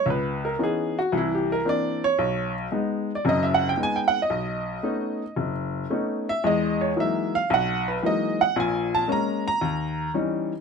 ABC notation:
X:1
M:4/4
L:1/16
Q:"Swing" 1/4=113
K:B
V:1 name="Upright piano"
B2 A2 G2 F2 (3E2 =G2 _B2 =d2 c2- | c2 z4 z =d ^d e f =g ^g =g f d- | d8- d z4 z e2 | d2 c2 e2 ^e2 f2 B2 d2 f2 |
g2 =a2 ^a2 a6 z4 |]
V:2 name="Upright piano" clef=bass
C,,4 [E,B,CD]2 z2 [=C,,E,]4 [E,_B,=C=D]2 z2 | B,,,4 [G,B,D]2 z2 [F,,,F,,]4 [G,B,D]2 z2 | B,,,4 [=A,B,CD]2 z2 F,,,4 [A,B,CD]2 z2 | [E,,G,]4 [E,F,G,A,D]2 z2 B,,,4 [E,F,G,A,D]2 z2 |
[A,,,A,,]4 [G,A,C]2 z2 D,,4 [E,=G,CD]2 z2 |]